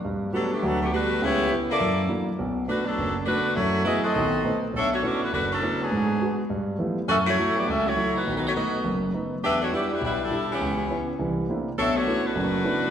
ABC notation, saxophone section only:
X:1
M:4/4
L:1/8
Q:"Swing" 1/4=204
K:Bphr
V:1 name="Saxophone section"
z2 [F,B,DA] [D,A,B,G] [F,B,DA] [D,A,B,G] [A,DFB]2 | [B,EG^c]2 z [^A,E=Ad]3 z2 | z2 [A,DFB] [F,B,DA]2 z [A,DFB]2 | [A,EF^c]2 [B,E^G^d] [=CFAd]4 z |
[K:Bm] [DAce] [A,DFc] [A,CFd] [A,DFB] [A,DFB] [F,CDA]2 [F,B,D^G]- | [F,B,D^G]3 z4 z | [CFAe] [A,EFc]2 [B,EGd] [CFAe] [A,EFc]2 [A,^DFB]- | (3[A,^DFB] [A,DFB] [A,DFc] [B,FA^d]3 z3 |
[DGBe] [A,DFc] [B,EGd] [G,DEB] [G,DEB] [G,DEA]2 [E,B,CG]- | [E,B,CG]3 z4 z | [DAce] [A,DFc]2 [A,DFB]4- [A,DFB] |]